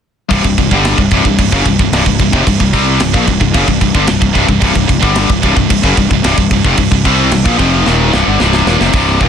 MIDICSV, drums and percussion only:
0, 0, Header, 1, 2, 480
1, 0, Start_track
1, 0, Key_signature, -3, "minor"
1, 0, Tempo, 539568
1, 273, Time_signature, 4, 2, 24, 8
1, 8261, End_track
2, 0, Start_track
2, 0, Title_t, "Drums"
2, 271, Note_on_c, 9, 49, 80
2, 274, Note_on_c, 9, 36, 106
2, 360, Note_off_c, 9, 49, 0
2, 363, Note_off_c, 9, 36, 0
2, 396, Note_on_c, 9, 36, 95
2, 485, Note_off_c, 9, 36, 0
2, 515, Note_on_c, 9, 49, 65
2, 516, Note_on_c, 9, 36, 81
2, 604, Note_off_c, 9, 49, 0
2, 605, Note_off_c, 9, 36, 0
2, 634, Note_on_c, 9, 36, 91
2, 723, Note_off_c, 9, 36, 0
2, 753, Note_on_c, 9, 49, 82
2, 759, Note_on_c, 9, 38, 108
2, 842, Note_off_c, 9, 49, 0
2, 848, Note_off_c, 9, 38, 0
2, 872, Note_on_c, 9, 36, 84
2, 961, Note_off_c, 9, 36, 0
2, 986, Note_on_c, 9, 49, 68
2, 992, Note_on_c, 9, 36, 88
2, 1075, Note_off_c, 9, 49, 0
2, 1081, Note_off_c, 9, 36, 0
2, 1112, Note_on_c, 9, 36, 80
2, 1201, Note_off_c, 9, 36, 0
2, 1233, Note_on_c, 9, 36, 92
2, 1233, Note_on_c, 9, 49, 90
2, 1322, Note_off_c, 9, 36, 0
2, 1322, Note_off_c, 9, 49, 0
2, 1355, Note_on_c, 9, 36, 94
2, 1444, Note_off_c, 9, 36, 0
2, 1473, Note_on_c, 9, 36, 87
2, 1475, Note_on_c, 9, 49, 65
2, 1562, Note_off_c, 9, 36, 0
2, 1564, Note_off_c, 9, 49, 0
2, 1595, Note_on_c, 9, 36, 93
2, 1684, Note_off_c, 9, 36, 0
2, 1715, Note_on_c, 9, 49, 92
2, 1721, Note_on_c, 9, 38, 108
2, 1804, Note_off_c, 9, 49, 0
2, 1810, Note_off_c, 9, 38, 0
2, 1834, Note_on_c, 9, 36, 98
2, 1923, Note_off_c, 9, 36, 0
2, 1951, Note_on_c, 9, 49, 65
2, 1953, Note_on_c, 9, 36, 91
2, 2040, Note_off_c, 9, 49, 0
2, 2042, Note_off_c, 9, 36, 0
2, 2074, Note_on_c, 9, 36, 87
2, 2163, Note_off_c, 9, 36, 0
2, 2196, Note_on_c, 9, 36, 97
2, 2203, Note_on_c, 9, 49, 82
2, 2285, Note_off_c, 9, 36, 0
2, 2292, Note_off_c, 9, 49, 0
2, 2314, Note_on_c, 9, 36, 93
2, 2403, Note_off_c, 9, 36, 0
2, 2434, Note_on_c, 9, 36, 85
2, 2442, Note_on_c, 9, 49, 65
2, 2523, Note_off_c, 9, 36, 0
2, 2531, Note_off_c, 9, 49, 0
2, 2668, Note_on_c, 9, 49, 82
2, 2673, Note_on_c, 9, 38, 113
2, 2757, Note_off_c, 9, 49, 0
2, 2762, Note_off_c, 9, 38, 0
2, 2795, Note_on_c, 9, 36, 106
2, 2884, Note_off_c, 9, 36, 0
2, 2914, Note_on_c, 9, 36, 85
2, 2915, Note_on_c, 9, 49, 59
2, 3003, Note_off_c, 9, 36, 0
2, 3004, Note_off_c, 9, 49, 0
2, 3032, Note_on_c, 9, 36, 85
2, 3121, Note_off_c, 9, 36, 0
2, 3153, Note_on_c, 9, 36, 103
2, 3155, Note_on_c, 9, 49, 81
2, 3242, Note_off_c, 9, 36, 0
2, 3244, Note_off_c, 9, 49, 0
2, 3272, Note_on_c, 9, 36, 91
2, 3361, Note_off_c, 9, 36, 0
2, 3392, Note_on_c, 9, 36, 86
2, 3396, Note_on_c, 9, 49, 59
2, 3481, Note_off_c, 9, 36, 0
2, 3484, Note_off_c, 9, 49, 0
2, 3511, Note_on_c, 9, 36, 84
2, 3600, Note_off_c, 9, 36, 0
2, 3623, Note_on_c, 9, 49, 82
2, 3628, Note_on_c, 9, 38, 111
2, 3712, Note_off_c, 9, 49, 0
2, 3717, Note_off_c, 9, 38, 0
2, 3752, Note_on_c, 9, 36, 96
2, 3841, Note_off_c, 9, 36, 0
2, 3871, Note_on_c, 9, 36, 87
2, 3872, Note_on_c, 9, 49, 57
2, 3960, Note_off_c, 9, 36, 0
2, 3961, Note_off_c, 9, 49, 0
2, 3990, Note_on_c, 9, 36, 85
2, 4079, Note_off_c, 9, 36, 0
2, 4106, Note_on_c, 9, 49, 75
2, 4109, Note_on_c, 9, 36, 103
2, 4195, Note_off_c, 9, 49, 0
2, 4198, Note_off_c, 9, 36, 0
2, 4230, Note_on_c, 9, 36, 93
2, 4319, Note_off_c, 9, 36, 0
2, 4352, Note_on_c, 9, 36, 85
2, 4356, Note_on_c, 9, 49, 58
2, 4441, Note_off_c, 9, 36, 0
2, 4445, Note_off_c, 9, 49, 0
2, 4472, Note_on_c, 9, 36, 85
2, 4561, Note_off_c, 9, 36, 0
2, 4585, Note_on_c, 9, 49, 82
2, 4591, Note_on_c, 9, 38, 105
2, 4674, Note_off_c, 9, 49, 0
2, 4680, Note_off_c, 9, 38, 0
2, 4712, Note_on_c, 9, 36, 92
2, 4801, Note_off_c, 9, 36, 0
2, 4833, Note_on_c, 9, 36, 88
2, 4833, Note_on_c, 9, 49, 64
2, 4922, Note_off_c, 9, 36, 0
2, 4922, Note_off_c, 9, 49, 0
2, 4952, Note_on_c, 9, 36, 89
2, 5041, Note_off_c, 9, 36, 0
2, 5072, Note_on_c, 9, 49, 94
2, 5073, Note_on_c, 9, 36, 98
2, 5161, Note_off_c, 9, 49, 0
2, 5162, Note_off_c, 9, 36, 0
2, 5191, Note_on_c, 9, 36, 91
2, 5280, Note_off_c, 9, 36, 0
2, 5314, Note_on_c, 9, 36, 89
2, 5315, Note_on_c, 9, 49, 61
2, 5403, Note_off_c, 9, 36, 0
2, 5404, Note_off_c, 9, 49, 0
2, 5434, Note_on_c, 9, 36, 90
2, 5522, Note_off_c, 9, 36, 0
2, 5552, Note_on_c, 9, 49, 89
2, 5557, Note_on_c, 9, 38, 120
2, 5641, Note_off_c, 9, 49, 0
2, 5646, Note_off_c, 9, 38, 0
2, 5673, Note_on_c, 9, 36, 98
2, 5762, Note_off_c, 9, 36, 0
2, 5789, Note_on_c, 9, 49, 64
2, 5791, Note_on_c, 9, 36, 87
2, 5878, Note_off_c, 9, 49, 0
2, 5880, Note_off_c, 9, 36, 0
2, 5911, Note_on_c, 9, 36, 92
2, 6000, Note_off_c, 9, 36, 0
2, 6026, Note_on_c, 9, 49, 91
2, 6031, Note_on_c, 9, 36, 88
2, 6115, Note_off_c, 9, 49, 0
2, 6119, Note_off_c, 9, 36, 0
2, 6152, Note_on_c, 9, 36, 96
2, 6241, Note_off_c, 9, 36, 0
2, 6272, Note_on_c, 9, 49, 64
2, 6274, Note_on_c, 9, 36, 82
2, 6361, Note_off_c, 9, 49, 0
2, 6363, Note_off_c, 9, 36, 0
2, 6507, Note_on_c, 9, 49, 90
2, 6513, Note_on_c, 9, 38, 114
2, 6596, Note_off_c, 9, 49, 0
2, 6602, Note_off_c, 9, 38, 0
2, 6633, Note_on_c, 9, 36, 110
2, 6722, Note_off_c, 9, 36, 0
2, 6754, Note_on_c, 9, 49, 61
2, 6755, Note_on_c, 9, 36, 90
2, 6843, Note_off_c, 9, 49, 0
2, 6844, Note_off_c, 9, 36, 0
2, 6996, Note_on_c, 9, 38, 68
2, 7085, Note_off_c, 9, 38, 0
2, 7236, Note_on_c, 9, 38, 80
2, 7325, Note_off_c, 9, 38, 0
2, 7473, Note_on_c, 9, 38, 89
2, 7562, Note_off_c, 9, 38, 0
2, 7592, Note_on_c, 9, 38, 85
2, 7681, Note_off_c, 9, 38, 0
2, 7714, Note_on_c, 9, 38, 100
2, 7803, Note_off_c, 9, 38, 0
2, 7836, Note_on_c, 9, 38, 90
2, 7925, Note_off_c, 9, 38, 0
2, 7944, Note_on_c, 9, 46, 52
2, 7950, Note_on_c, 9, 36, 103
2, 8033, Note_off_c, 9, 46, 0
2, 8039, Note_off_c, 9, 36, 0
2, 8191, Note_on_c, 9, 36, 78
2, 8261, Note_off_c, 9, 36, 0
2, 8261, End_track
0, 0, End_of_file